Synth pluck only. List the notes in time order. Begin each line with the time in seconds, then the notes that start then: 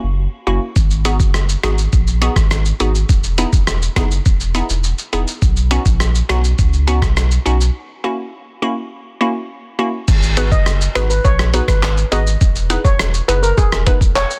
0.47 A#3 C#4 E4 F#4
1.05 B3 D#4 F#4 G#4
1.63 B3 D#4 F#4 G#4
2.22 B3 D#4 F#4 G#4
2.80 B3 D#4 F#4 G#4
3.38 B3 D#4 E4 G#4
3.96 B3 D#4 E4 G#4
4.55 B3 D#4 E4 G#4
5.13 B3 D#4 E4 G#4
5.71 B3 C#4 D#4 F#4
6.29 B3 C#4 D#4 F#4
6.87 B3 C#4 D#4 F#4
7.46 B3 C#4 D#4 F#4
8.04 A#3 C#4 E4 F#4
8.62 A#3 C#4 E4 F#4
9.21 A#3 C#4 E4 F#4
9.79 A#3 C#4 E4 F#4
10.37 B3 D#4 F#4 G#4 B4
10.95 B3 D#4 F#4 G#4 B4
11.54 B3 D#4 F#4 G#4 B4
12.12 B3 D#4 F#4 G#4 B4
12.70 B3 D#4 E4 G#4 B4
13.28 B3 D#4 E4 G#4 B4
13.87 B3 D#4 E4 G#4 B4